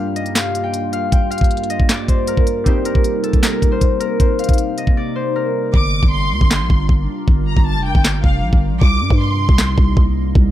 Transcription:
Already playing: ambient pad G2 G3 A#3 F4, synth keys G3 A#3 D4 F4 G4, harp A#4 C5 D5 F5 G5
0.16 harp D#5, closed hi-hat
0.26 closed hi-hat
0.35 harp F5, snare, clap, closed hi-hat
0.55 closed hi-hat
0.64 harp G5
0.74 closed hi-hat
0.93 harp F5, closed hi-hat
1.12 harp G5, kick, closed hi-hat
1.31 harp F5, closed hi-hat
1.38 kick, closed hi-hat
1.44 closed hi-hat
1.51 closed hi-hat
1.57 closed hi-hat
1.64 closed hi-hat
1.70 harp D#5, closed hi-hat
1.80 kick
1.89 harp D5, snare, clap, closed hi-hat
2.08 harp C5, kick, closed hi-hat
2.27 harp A#4, closed hi-hat
2.37 kick
2.47 closed hi-hat
2.64 ambient pad C3 D#4, synth keys G3 A#3 C4 D#4, harp C5, kick, closed hi-hat
2.68 synth keys G4
2.85 harp A#4, closed hi-hat
2.95 kick
3.04 closed hi-hat
3.24 harp A4, closed hi-hat
3.33 kick, closed hi-hat
3.43 harp A#4, snare, clap, closed hi-hat
3.62 kick, closed hi-hat
3.72 harp C5
3.81 kick, closed hi-hat
4.00 harp A#4, closed hi-hat
4.20 harp C5, kick, closed hi-hat
4.39 harp F5, closed hi-hat
4.44 closed hi-hat
4.49 kick, closed hi-hat
4.54 closed hi-hat
4.58 closed hi-hat
4.78 harp D#5, closed hi-hat
4.87 kick
4.97 harp D5
5.16 harp C5
5.36 harp A#4
5.74 808-style bass G1, ambient pad G3 D4 F4 A#4, violin section D6, kick
6.03 808-style bass G1, kick
6.12 violin section C6
6.31 808-style bass D2
6.41 808-style bass G1, kick
6.51 snare, clap
6.60 808-style bass A#1
6.70 808-style bass G1, kick
6.89 808-style bass G1, kick
7.28 808-style bass G1, kick
7.47 violin section A#5
7.57 808-style bass G1, kick
7.66 violin section A5
7.76 808-style bass F1
7.85 violin section G5
7.95 808-style bass G1, kick
8.05 snare, clap
8.24 808-style bass F1, violin section F5, kick
8.43 808-style bass A#1
8.53 808-style bass G1, kick
8.72 808-style bass A#1
8.81 808-style bass C2, ambient pad C3 A#3 D#4, violin section D6, kick
9.01 808-style bass G2
9.10 808-style bass G2, kick
9.20 violin section C6
9.49 808-style bass C2, kick
9.58 snare, clap
9.78 808-style bass C2, kick
9.97 808-style bass C2, kick
10.35 808-style bass C2, kick

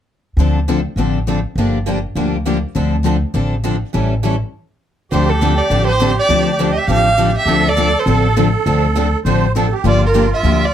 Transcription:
0.37 upright bass D2, steel-string acoustic guitar D3 F3 C4 D4 A4
0.68 steel-string acoustic guitar D3 F3 C4 D4 A4
0.96 upright bass A1, steel-string acoustic guitar D3 F3 C4 D4 A4
1.27 steel-string acoustic guitar D3 F3 C4 D4 A4
1.55 upright bass G1, steel-string acoustic guitar D3 F3 A#3 D4 G4
1.87 steel-string acoustic guitar D3 F3 A#3 D4 G4
2.15 upright bass D2, steel-string acoustic guitar D3 F3 A#3 D4 G4
2.46 steel-string acoustic guitar D3 F3 A#3 D4 G4
2.75 upright bass D2, steel-string acoustic guitar D3 F3 C4 D4 A4
3.03 steel-string acoustic guitar D3 F3 C4 D4 A4
3.34 upright bass A1, steel-string acoustic guitar D3 F3 C4 D4 A4
3.64 steel-string acoustic guitar D3 F3 C4 D4 A4
3.94 upright bass A1, steel-string acoustic guitar E3 G3 C#4 E4 A4
4.24 steel-string acoustic guitar E3 G3 C#4 E4 A4
5.11 upright bass D2, steel-string acoustic guitar D3 F3 C4 D4 A4, accordion G4, violin C5
5.29 violin A4
5.41 steel-string acoustic guitar D3 F3 C4 D4 A4
5.58 violin D5
5.70 upright bass A1, steel-string acoustic guitar D3 F3 C4 D4 A4
5.87 violin C5
6.00 steel-string acoustic guitar D3 F3 C4 D4 A4
6.19 violin D5
6.29 upright bass D2, steel-string acoustic guitar D3 F3 C4 D4 A4
6.60 steel-string acoustic guitar D3 F3 C4 D4 A4
6.72 violin D#5
6.78 violin E5
6.88 upright bass A1, steel-string acoustic guitar D3 F3 C4 D4 A4, violin F5
7.18 steel-string acoustic guitar D3 F3 C4 D4 A4
7.39 violin E5
7.45 upright bass D2, steel-string acoustic guitar D3 F3 C4 D4 A4, accordion A4
7.68 violin D5
7.78 steel-string acoustic guitar D3 F3 C4 D4 A4
7.99 violin C5
8.06 upright bass A1, steel-string acoustic guitar D3 F3 C4 D4 A4
8.12 violin A4
8.37 steel-string acoustic guitar D3 F3 C4 D4 A4
8.66 upright bass D2, steel-string acoustic guitar D3 F3 C4 D4 A4
8.96 steel-string acoustic guitar D3 F3 C4 D4 A4
9.25 upright bass A1, steel-string acoustic guitar D3 F3 C4 D4 A4, accordion C5
9.55 steel-string acoustic guitar D3 F3 C4 D4 A4, accordion A4
9.73 accordion G4
9.84 upright bass G1, steel-string acoustic guitar D3 F3 A#3 D4 G4, accordion F4
9.88 violin D5
10.06 violin A#4
10.14 steel-string acoustic guitar D3 F3 A#3 D4 G4
10.34 violin E5
10.43 upright bass D2, steel-string acoustic guitar D3 F3 A#3 D4 G4
10.65 violin D5

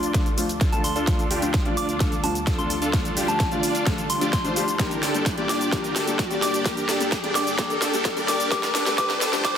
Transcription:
Already playing: analog synth pad D2 D3 A3 F4, felt piano F3 A3 D4 F4, supersaw synth D4 F4 D5, synth bell C6, riser
0.03 closed hi-hat, shaker
0.14 felt piano F3 A3 D4 F4, supersaw synth D4 F4 A4, kick, snare, closed hi-hat, shaker
0.26 closed hi-hat, shaker
0.37 felt piano F3 A3 D4 F4, open hi-hat, shaker
0.49 closed hi-hat, shaker
0.61 supersaw synth D4 F4 A4, kick, snare, closed hi-hat, shaker
0.72 felt piano F3 A3 D4 F4, synth bell A5, closed hi-hat, shaker
0.84 synth bell C6, open hi-hat, shaker
0.96 supersaw synth D4 F4 A4, closed hi-hat, shaker
1.07 felt piano F3 A3 D4 F4, analog synth pad G3, kick, snare, closed hi-hat, shaker
1.19 closed hi-hat, shaker
1.31 supersaw synth D4 F4 G4, open hi-hat, shaker
1.42 felt piano F3 A3 D4 F4, closed hi-hat, shaker
1.54 kick, snare, closed hi-hat, shaker
1.65 felt piano F3 A3 D4 F4, supersaw synth D4 F4 D5, closed hi-hat
1.77 synth bell D6, open hi-hat, shaker
1.89 closed hi-hat, shaker
2.00 felt piano F3 A3 D4 F4, supersaw synth D4 A4, kick, snare, closed hi-hat, shaker
2.12 closed hi-hat, shaker
2.23 felt piano F3 A3 D4 F4, synth bell A5, open hi-hat, shaker
2.35 closed hi-hat, shaker
2.47 supersaw synth D4 F4 A4, kick, snare, closed hi-hat, shaker
2.58 felt piano F3 A3 D4 F4, synth bell C6, closed hi-hat, shaker
2.70 open hi-hat, shaker
2.82 supersaw synth D4 F4 A4, closed hi-hat, shaker
2.93 felt piano F3 A3 D4 F4, kick, snare, closed hi-hat, shaker
3.05 closed hi-hat, shaker
3.17 supersaw synth D4 F4 G4, open hi-hat, shaker
3.28 felt piano F3 A3 D4 F4, synth bell A5, closed hi-hat, shaker
3.40 kick, snare, closed hi-hat, shaker
3.51 felt piano F3 A3 D4 F4, supersaw synth D4 F4 D5, closed hi-hat, shaker
3.63 open hi-hat, shaker
3.75 closed hi-hat, shaker
3.86 felt piano F3 A3 D4 F4, supersaw synth D4 A4, kick, snare, closed hi-hat, shaker
3.98 closed hi-hat, shaker
4.10 synth bell C6, open hi-hat, shaker
4.21 felt piano F3 A3 D4 G4, supersaw synth D4 F4 D5, closed hi-hat, shaker
4.33 synth bell C6, kick, snare, closed hi-hat, shaker
4.44 felt piano F3 A3 D4 F4, supersaw synth D4 F4 C5, closed hi-hat, shaker
4.56 felt piano F3 A3 D4 G4, open hi-hat, shaker
4.68 closed hi-hat, shaker
4.79 analog synth pad G2 A#3 G4, felt piano G3 A#3 D4 G4, supersaw synth D4 G4 A#4, kick, snare, closed hi-hat, shaker
4.91 closed hi-hat, shaker
5.03 supersaw synth D4 G4 A4, snare, open hi-hat, shaker
5.14 felt piano G3 A#3 D4 G4, closed hi-hat, shaker
5.26 kick, snare, closed hi-hat, shaker
5.37 felt piano G3 A#3 D4 G4, supersaw synth D4 G4 D5, closed hi-hat
5.49 synth bell D6, snare, open hi-hat, shaker
5.61 closed hi-hat, shaker
5.72 felt piano G3 A#3 D4 G4, supersaw synth D4 A#4, kick, snare, closed hi-hat, shaker
5.84 closed hi-hat, shaker
5.96 supersaw synth D4 G4 A4, snare, open hi-hat, shaker
6.07 felt piano G3 A#3 D4 G4, closed hi-hat, shaker
6.19 kick, snare, closed hi-hat, shaker
6.30 felt piano G3 A#3 D4 G4, supersaw synth D4 G4 D5, closed hi-hat, shaker
6.42 synth bell D6, snare, open hi-hat, shaker
6.54 closed hi-hat, shaker
6.65 felt piano G3 A#3 D4 G4, supersaw synth D4 A#4, kick, snare, closed hi-hat, shaker
6.77 closed hi-hat, shaker
6.89 supersaw synth D4 G4 A4, snare, open hi-hat, shaker
7.00 felt piano G3 A#3 D4 G4, closed hi-hat, shaker
7.12 kick, snare, closed hi-hat, shaker
7.23 felt piano G3 A#3 D4 G4, supersaw synth D4 G4 D5, closed hi-hat
7.35 synth bell D6, snare, open hi-hat, shaker
7.47 closed hi-hat, shaker
7.58 felt piano G3 A#3 D4 G4, supersaw synth D4 G4, kick, snare, closed hi-hat, shaker
7.70 closed hi-hat, shaker
7.82 supersaw synth D4 G4 A4, snare, open hi-hat, shaker
7.93 felt piano G3 A#3 D4 G4, closed hi-hat, shaker
8.05 kick, snare, closed hi-hat, shaker
8.16 felt piano G3 A#3 D4 G4, supersaw synth D4 G4 D5, closed hi-hat, shaker
8.28 synth bell D6, snare, open hi-hat, shaker
8.40 closed hi-hat, shaker
8.51 analog synth pad F2 F3 C4 A4, felt piano G3 A3 D4 G4, supersaw synth G4, synth bell D6, kick, snare, closed hi-hat, shaker
8.63 snare, closed hi-hat, shaker
8.75 supersaw synth D4 G4 A4, snare, open hi-hat, shaker
8.86 felt piano G3 A3 D4 G4, snare, closed hi-hat, shaker
8.97 felt piano G3 A3 D4 G4, supersaw synth D4 G4 A4, synth bell D6, kick, snare, closed hi-hat, shaker
9.10 snare, closed hi-hat
9.21 supersaw synth D4 G4 A4, snare, open hi-hat, shaker
9.32 felt piano G3 A3 D4 G4, snare, closed hi-hat, shaker
9.44 felt piano G3 A3 D4 G4, supersaw synth D4 G4 A4, synth bell D6, kick, snare, closed hi-hat, shaker

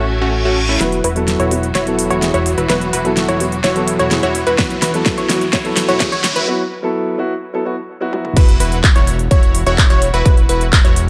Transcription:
Already playing: analog synth bass A1, grand piano E3 A3 C#4 E4, supersaw synth A3 C#4 F#4, string section A4 C#5 E5 C#6, reverse cymbal
0.22 supersaw synth A3 C#4 F#4
0.45 supersaw synth A3 C#4 F#4
0.69 supersaw synth A3 C#4 E4
0.80 analog synth bass E1, string section E3 F#3 B3 F#4, grand piano F#3 B3 E4 F#4, supersaw synth E4 F#4 B4, synth pluck B4, snare, closed hi-hat, riser
0.92 closed hi-hat
1.04 analog synth bass E1, supersaw synth E4 F#4 B4, synth pluck B4, open hi-hat
1.15 grand piano F#3 B3 E4 A4, closed hi-hat
1.28 snare, closed hi-hat
1.40 analog synth bass E1, supersaw synth E4 F#4 C#5, synth pluck C#5, closed hi-hat
1.51 grand piano F#3 B3 E4 F#4, open hi-hat
1.63 closed hi-hat
1.75 analog synth bass E1, supersaw synth E4 F#4 C#5, synth pluck C#5, snare, closed hi-hat
1.86 grand piano F#3 B3 E4 A4, closed hi-hat
1.99 open hi-hat
2.10 analog synth bass E1, supersaw synth E4 F#4 C#5, synth pluck C#5, closed hi-hat
2.22 grand piano F#3 B3 E4 G#4, snare, closed hi-hat
2.34 analog synth bass E1, supersaw synth E4 F#4 C#5, synth pluck C#5, closed hi-hat
2.46 open hi-hat
2.58 analog synth bass E1, supersaw synth E4 F#4 B4, synth pluck B4, closed hi-hat
2.69 analog synth bass E1, grand piano F#3 B3 E4 F#4, supersaw synth E4 F#4 B4, synth pluck B4, snare, closed hi-hat
2.81 closed hi-hat
2.93 analog synth bass E1, supersaw synth E4 F#4 B4, synth pluck B4, open hi-hat
3.04 grand piano F#3 B3 E4 A4, closed hi-hat
3.17 snare, closed hi-hat
3.29 analog synth bass E1, supersaw synth E4 F#4 C#5, synth pluck C#5, closed hi-hat
3.40 grand piano F#3 B3 E4 F#4, open hi-hat
3.52 closed hi-hat
3.64 analog synth bass E1, supersaw synth E4 F#4 C#5, synth pluck C#5, snare, closed hi-hat
3.75 grand piano F#3 B3 E4 A4, closed hi-hat
3.88 open hi-hat
3.99 analog synth bass E1, supersaw synth E4 F#4 C#5, synth pluck C#5, closed hi-hat
4.11 grand piano F#3 B3 E4 G#4, snare, closed hi-hat
4.23 analog synth bass E1, supersaw synth E4 F#4 C#5, synth pluck C#5, closed hi-hat
4.35 open hi-hat
4.47 analog synth bass E1, supersaw synth E4 F#4 B4, synth pluck B4, closed hi-hat
4.58 analog synth bass E1, grand piano F#3 B3 E4 F#4, supersaw synth E4 F#4 B4, synth pluck B4, kick, snare, closed hi-hat
4.70 closed hi-hat
4.82 analog synth bass E1, supersaw synth E4 F#4 B4, synth pluck B4, snare, open hi-hat
4.94 grand piano F#3 B3 E4 A4, closed hi-hat
5.06 kick, snare, closed hi-hat
5.18 analog synth bass E1, supersaw synth E4 F#4 C#5, synth pluck C#5, closed hi-hat
5.29 grand piano F#3 B3 E4 F#4, snare, open hi-hat
5.41 closed hi-hat
5.53 analog synth bass E1, supersaw synth E4 F#4 C#5, synth pluck C#5, kick, snare, closed hi-hat
5.64 grand piano F#3 B3 E4 A4, closed hi-hat
5.77 snare, open hi-hat
5.88 analog synth bass E1, supersaw synth E4 F#4 C#5, synth pluck C#5, closed hi-hat
6.00 grand piano F#3 B3 E4 G#4, kick, snare, closed hi-hat
6.12 analog synth bass E1, supersaw synth E4 F#4 C#5, synth pluck C#5, closed hi-hat
6.24 snare, open hi-hat
6.36 analog synth bass E1, supersaw synth E4 F#4 B4, synth pluck B4, closed hi-hat
6.47 grand piano F#3 B3 E4 F#4
6.82 grand piano F#3 B3 E4 A4
7.18 grand piano F#3 B3 E4 F#4
7.53 grand piano F#3 B3 E4 A4
7.65 grand piano F#3 B3 E4 F#4
8.00 grand piano F#3 B3 E4 F#4
8.12 grand piano F#3 B3 E4 F#4, high tom
8.25 mid tom
8.37 analog synth bass E1, supersaw synth E4 F#4 B4, synth pluck B4, kick, closed hi-hat, crash, impact
8.48 closed hi-hat
8.60 analog synth bass E1, supersaw synth E4 F#4 B4, synth pluck B4, open hi-hat
8.72 closed hi-hat
8.84 kick, clap, closed hi-hat
8.96 analog synth bass E1, supersaw synth E4 F#4 C#5, synth pluck C#5, closed hi-hat
9.07 open hi-hat
9.19 closed hi-hat
9.31 analog synth bass E1, supersaw synth E4 F#4 C#5, synth pluck C#5, kick, closed hi-hat
9.43 closed hi-hat
9.55 open hi-hat
9.66 analog synth bass E1, supersaw synth E4 F#4 C#5, synth pluck C#5, closed hi-hat
9.78 kick, clap, closed hi-hat
9.90 analog synth bass E1, supersaw synth E4 F#4 C#5, synth pluck C#5, closed hi-hat
10.02 open hi-hat
10.14 analog synth bass E1, supersaw synth E4 F#4 B4, synth pluck B4, closed hi-hat
10.25 analog synth bass E1, supersaw synth E4 F#4 B4, synth pluck B4, kick, closed hi-hat
10.37 closed hi-hat
10.49 analog synth bass E1, supersaw synth E4 F#4 B4, synth pluck B4, open hi-hat
10.61 closed hi-hat
10.73 kick, clap, closed hi-hat
10.85 analog synth bass E1, supersaw synth E4 F#4 C#5, synth pluck C#5, closed hi-hat
10.96 open hi-hat

